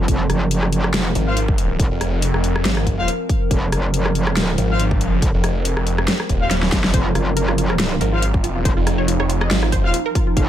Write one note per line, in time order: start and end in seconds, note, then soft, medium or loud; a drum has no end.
0.00 10.49 F3 medium
0.00 10.49 C4 medium
0.08 0.28 F1 loud
0.08 6.92 A#4 medium
0.08 kick loud
0.08 closed hi-hat medium
0.30 0.89 F#1 loud
0.30 cross-stick medium
0.30 closed hi-hat medium
0.51 closed hi-hat medium
0.63 cross-stick medium
0.72 closed hi-hat medium
0.84 cross-stick medium
0.89 1.14 F1 loud
0.94 snare loud
0.94 closed hi-hat medium
1.15 1.78 G#1 loud
1.15 closed hi-hat soft
1.27 1.38 F4 medium
1.27 1.38 C5 medium
1.27 1.38 F5 loud
1.37 closed hi-hat medium
1.48 kick loud
1.58 closed hi-hat medium
1.79 1.89 F1 loud
1.79 kick loud
1.79 closed hi-hat medium
1.91 2.32 F1 loud
2.01 cross-stick medium
2.01 closed hi-hat soft
2.22 closed hi-hat medium
2.34 2.64 F1 medium
2.34 cross-stick medium
2.44 closed hi-hat medium
2.56 cross-stick medium
2.65 3.07 G#1 loud
2.65 snare loud
2.65 closed hi-hat medium
2.77 cross-stick medium
2.87 kick medium
2.87 closed hi-hat soft
2.98 3.10 F4 medium
2.98 3.10 C5 medium
2.98 3.10 F5 loud
3.08 closed hi-hat medium
3.29 kick loud
3.29 closed hi-hat medium
3.51 3.71 F1 loud
3.51 kick loud
3.51 closed hi-hat medium
3.72 4.57 F#1 loud
3.72 cross-stick medium
3.72 closed hi-hat medium
3.94 closed hi-hat medium
4.06 cross-stick medium
4.15 closed hi-hat medium
4.27 cross-stick medium
4.37 snare loud
4.37 closed hi-hat medium
4.58 5.02 G#1 loud
4.58 closed hi-hat soft
4.70 4.81 F4 medium
4.70 4.81 C5 medium
4.70 4.81 F5 loud
4.79 closed hi-hat medium
4.91 kick loud
5.01 5.21 G1 loud
5.01 closed hi-hat medium
5.22 5.32 F1 loud
5.22 kick loud
5.22 closed hi-hat medium
5.34 5.75 F1 loud
5.44 cross-stick medium
5.44 closed hi-hat medium
5.65 closed hi-hat medium
5.77 6.06 F1 medium
5.77 cross-stick medium
5.87 closed hi-hat medium
5.98 cross-stick medium
6.08 snare loud
6.08 closed hi-hat medium
6.20 cross-stick medium
6.29 6.71 D#1 loud
6.29 kick medium
6.29 closed hi-hat medium
6.41 6.52 F4 medium
6.41 6.52 C5 medium
6.41 6.52 F5 loud
6.51 snare medium
6.51 closed hi-hat medium
6.63 snare medium
6.72 6.92 G#1 loud
6.72 kick loud
6.72 snare medium
6.72 closed hi-hat medium
6.84 snare medium
6.94 7.14 F1 loud
6.94 10.49 D#4 medium
6.94 7.00 C5 loud
6.94 kick loud
6.94 closed hi-hat medium
7.06 7.11 F4 medium
7.15 7.99 F#1 loud
7.15 7.22 F4 medium
7.15 cross-stick medium
7.15 closed hi-hat medium
7.27 7.32 F4 medium
7.37 7.43 A#4 medium
7.37 closed hi-hat medium
7.48 7.54 F4 medium
7.48 cross-stick medium
7.58 7.65 F4 medium
7.58 closed hi-hat medium
7.70 7.75 A#4 medium
7.70 cross-stick medium
7.79 7.86 F4 medium
7.79 snare loud
7.79 closed hi-hat medium
7.91 7.97 F4 medium
8.01 8.64 G#1 loud
8.01 8.07 A#4 medium
8.01 closed hi-hat medium
8.13 8.18 F4 medium
8.13 8.24 F4 medium
8.13 8.24 C5 medium
8.13 8.24 F5 loud
8.22 8.29 F4 medium
8.22 closed hi-hat medium
8.34 kick loud
8.44 8.50 F4 medium
8.44 closed hi-hat medium
8.55 8.61 F4 medium
8.65 8.75 F1 loud
8.65 8.72 C5 medium
8.65 kick loud
8.65 closed hi-hat medium
8.77 9.18 F1 loud
8.77 8.82 F4 medium
8.87 8.93 F4 medium
8.87 cross-stick medium
8.87 closed hi-hat medium
8.98 9.04 C#5 medium
9.08 9.15 F4 medium
9.08 closed hi-hat medium
9.20 9.49 F1 loud
9.20 9.25 C#5 medium
9.20 cross-stick medium
9.29 9.36 F4 medium
9.29 closed hi-hat medium
9.41 9.47 D#5 loud
9.41 cross-stick medium
9.51 9.92 G#1 loud
9.51 9.57 F4 medium
9.51 snare loud
9.51 closed hi-hat medium
9.63 9.68 F4 medium
9.63 cross-stick medium
9.72 9.79 C5 loud
9.72 kick medium
9.72 closed hi-hat medium
9.84 9.95 F4 medium
9.84 9.90 F4 medium
9.84 9.95 C5 medium
9.84 9.95 F5 loud
9.94 10.00 F4 medium
9.94 closed hi-hat medium
10.06 10.11 A#4 loud
10.15 10.22 F4 medium
10.15 kick loud
10.15 closed hi-hat medium
10.27 10.32 F4 medium
10.37 10.49 F1 loud
10.37 10.43 F5 loud
10.37 kick loud
10.37 closed hi-hat medium